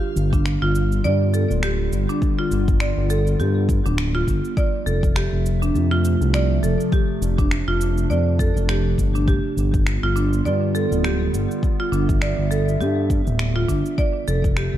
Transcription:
Already playing: D3 G3 B3 F4 G4
0.16 G1, cabasa
0.33 D4, kick, cabasa
0.46 finger snap, cabasa
0.62 G1 F4
0.75 cabasa
0.92 cabasa
1.04 G2 D5, cabasa
1.34 A4, cabasa
1.50 D1, cabasa
1.63 G4, finger snap, cabasa
1.93 G1, cabasa
2.09 D4, cabasa
2.22 kick, cabasa
2.39 F4
2.51 G1, cabasa
2.68 kick, cabasa
2.80 D5, finger snap, cabasa
2.97 G1
3.10 A4, cabasa
3.27 cabasa
3.39 G2 G4, cabasa
3.69 kick, cabasa
3.86 D1 D4, cabasa
3.98 finger snap, cabasa
4.15 F4
4.27 G1, kick, cabasa
4.45 cabasa
4.56 C3 F3 A3 D5 E5, kick, cabasa
4.86 F1 A4, cabasa
5.03 kick, cabasa
5.16 G4, finger snap, cabasa
5.33 F1
5.46 cabasa
5.62 D4, cabasa
5.75 F2, cabasa
5.91 F4
6.05 cabasa
6.21 C2, cabasa
6.34 D5, finger snap, cabasa
6.63 F1 A4, cabasa
6.80 cabasa
6.92 D4 G4, kick, cabasa
7.21 F1, cabasa
7.38 D4, kick, cabasa
7.51 finger snap, cabasa
7.68 F1 F4
7.81 cabasa
7.98 cabasa
8.10 F2 D5, cabasa
8.39 A4, kick, cabasa
8.56 F1, cabasa
8.69 G4, finger snap, cabasa
8.98 G1, kick, cabasa
9.15 D4, cabasa
9.28 D3 G3 B3 F4 G4, kick, cabasa
9.57 G1, cabasa
9.74 kick, cabasa
9.87 finger snap, cabasa
10.03 G1 F4
10.16 D4, cabasa
10.33 cabasa
10.45 G2 D5, cabasa
10.75 A4, cabasa
10.91 D1, cabasa
11.04 G4, finger snap, cabasa
11.33 G1, cabasa
11.51 cabasa
11.63 E5, kick, cabasa
11.80 F4
11.92 G1 D4, cabasa
12.09 kick, cabasa
12.21 D5, finger snap, cabasa
12.38 G1
12.51 A4, cabasa
12.68 cabasa
12.80 G2 G4, cabasa
13.10 kick, cabasa
13.27 D1, cabasa
13.39 finger snap, cabasa
13.56 F4
13.68 G1 D4, kick, cabasa
13.86 cabasa
13.98 C3 F3 A3 D5 E5, kick, cabasa
14.28 F1 A4, cabasa
14.44 kick, cabasa
14.57 G4, finger snap, cabasa
14.74 F1

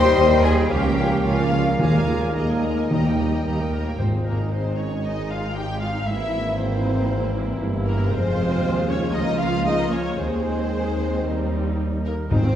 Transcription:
Already playing: D#2 D#3 G3 C5 D#5 C6
0.02 G3 D#4 C5 G5
0.14 D#2 D#3 G4 D#5
0.27 G3 D#4 C5 G5
0.43 D#3 G4 G#4 D#5 G#5
0.56 G3 D#4 C5 G5
0.70 C#2 A#2 F3 A#3 C#4 F4 G4 C#5 F5 G5
0.84 A#3 C#4 A#4 C#5
0.97 C#4 F4 C#5 F5
1.10 A#3 C#4 A#4 C#5
1.24 C#2 A#2 F3 C#4 F4 C#5 F5
1.38 A#3 C#4 A#4 C#5
1.51 C#4 F4 C#5 F5
1.66 A#3 C#4 A#4 C#5
1.79 D#2 A#2 D#3 G#3 F4 G#4 F5 G#5 A#5
1.94 A#3 A#4 G#5
2.08 G#3 G#4 A#5
2.22 A#3 A#4 G#5
2.35 D#2 A#2 G#3 D#4 G#4 D#5 A#5
2.49 A#3 A#4 G#5
2.63 G#3 G#4 A#5
2.77 A#3 A#4 G#5
2.90 D#2 A#2 D#3 G3 G4 D#5 G5 A#5
3.05 A#3 D#4 A#4 G5
3.18 G3 G4 D#5 A#5
3.32 A#3 D#4 A#4 G5
3.45 D#2 G3 G4 D#5 A#5
3.59 A#3 D#4 A#4 G5
3.71 G3 A#3 G4 A#4 D#5 A#5
3.86 A#3 D#4 A#4 G5
3.98 G#1 G#2 D#3 G#3 D#4 F4 C5
4.02 C4
4.25 A#4
4.30 A#3
4.51 C4 D#4 C5
4.77 C#4 C#5
5.03 G#3 D#4 D#5
5.30 F4 F5
5.54 G4 G5
5.79 F4 F5
6.05 G#1 G#2 E3 A#3 E4 E5
6.30 C4
6.57 A#3 C4 E4 C5
7.07 E4
7.58 G1 G2 G4
7.85 A#3 A#4
8.10 F1 F2 F3 G#3 C4 F4 G#4 C5
8.61 D#2
8.88 C#4 C#5
9.13 C#2 A#3 D#4 F4 D#5
9.38 F4 F5
9.66 D#4 F4 D#5
9.91 C#4 C#5
10.17 D#2 D#3 G#3 C4 D#4 G#4 C5
11.24 D#2 G3 D#4
12.03 A#3 A#4
12.30 G#1 G#2 D#3 G#3 C4 D#4 F4 C5
12.44 G#2 D#3 C4

